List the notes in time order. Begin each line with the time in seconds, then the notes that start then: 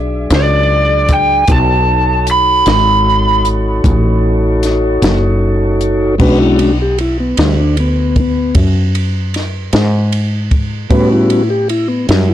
Already playing: B1 F#3 D4 G#4 D5
0.30 C#2, snare, closed hi-hat
0.36 D5
1.09 kick, closed hi-hat
1.14 G5
1.47 B1 D#4 F#4 A4 C#5, kick, closed hi-hat
1.52 A5
2.27 closed hi-hat
2.31 B5
2.66 G#1, snare, closed hi-hat
2.71 B5
3.45 closed hi-hat
3.84 A1, kick, closed hi-hat
4.63 snare, closed hi-hat
5.02 F#1, snare, closed hi-hat
5.81 closed hi-hat
6.18 B1 G#3 C#4 D4 F#4 B4, kick, crash
6.40 E4
6.59 D4, ride
6.82 G4
6.98 E4, ride
7.20 B3
7.37 D2 G3, snare, ride
7.60 D4
7.77 B3, ride
8.16 A#3, kick, ride
8.20 B3
8.55 F#2, kick, ride
8.95 ride
9.34 snare, ride
9.73 G#2, snare, ride
10.12 ride
10.51 kick, ride
10.90 A2 G3 B3 C#4 F#4 B4, kick, ride
11.12 E4
11.30 E4, ride
11.50 G4
11.69 E4, ride
11.88 B3
12.09 F#2 G3, snare, ride
12.29 E4